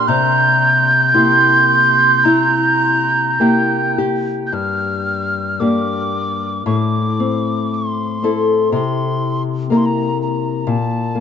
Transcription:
Already playing: A#2 A#3 D4 G4
0.08 C3 A#5 G6
1.14 A#3 E4 G4 C6
2.24 E4 A#5
3.40 A#3 E4 G4 G5
3.98 G4
4.47 G6
4.52 G2 F6
5.60 A#3 D4 G4 D6
6.66 A2 D6
7.20 C4
7.74 C6
8.23 C4 E4 A4
8.72 C3 C6
9.70 A#3 E4 A#4
9.74 A#5 C6
9.86 A#5
10.22 A#5
10.61 A#5
10.67 A#2 A5
11.15 A#3

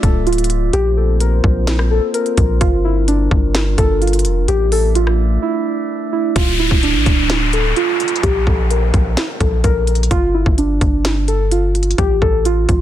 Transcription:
Already playing: A3 F4 D5 E5
0.03 D1 A4, kick, closed hi-hat
0.27 F4, closed hi-hat
0.33 closed hi-hat
0.38 closed hi-hat
0.44 closed hi-hat
0.50 closed hi-hat
0.73 A#1 A#3 C4 G4 C5, closed hi-hat
0.97 A4
1.20 A#4, closed hi-hat
1.44 A#1, kick
1.67 snare, closed hi-hat
1.79 cross-stick
1.91 A4
2.14 A#4, closed hi-hat
2.26 closed hi-hat
2.37 A#1, kick, closed hi-hat
2.61 G1 G3 D4 F4 A#4, kick, closed hi-hat
2.85 E4
3.08 D4, closed hi-hat
3.31 G1, kick
3.55 snare, closed hi-hat
3.78 G1 A4, kick, closed hi-hat
4.02 F4, closed hi-hat
4.07 closed hi-hat
4.13 closed hi-hat
4.19 closed hi-hat
4.25 F1, closed hi-hat
4.48 A1 A3 G4 D5 E5, closed hi-hat
4.72 A4, open hi-hat
4.95 F4, closed hi-hat
5.07 cross-stick
5.42 E4
6.13 E4
6.36 D1 F4, kick, closed hi-hat, downlifter
6.59 E4
6.71 D1, kick
6.83 D4, closed hi-hat
6.95 A1
7.06 D1, kick, closed hi-hat
7.30 snare, closed hi-hat
7.53 A4, closed hi-hat
7.76 F4, closed hi-hat
8.00 closed hi-hat
8.08 closed hi-hat
8.16 closed hi-hat
8.23 A#1 G4, kick, closed hi-hat
8.47 A#1 A4, kick
8.70 A#4, closed hi-hat
8.94 A#1, kick, closed hi-hat
9.17 snare, closed hi-hat
9.40 A#1 A4, kick, closed hi-hat
9.64 A#1 A#4, kick, closed hi-hat
9.87 closed hi-hat, open hi-hat
9.95 closed hi-hat
10.03 closed hi-hat
10.11 G1 F4, kick, closed hi-hat
10.34 E4
10.46 G1, kick
10.58 D4, closed hi-hat
10.81 G1, kick, closed hi-hat
11.05 snare, closed hi-hat
11.28 A4, closed hi-hat
11.51 F4, closed hi-hat
11.75 closed hi-hat
11.83 closed hi-hat
11.91 closed hi-hat
11.98 A1 G4, kick, closed hi-hat
12.22 A1 A4, kick
12.45 F4, closed hi-hat
12.69 A1, kick, closed hi-hat

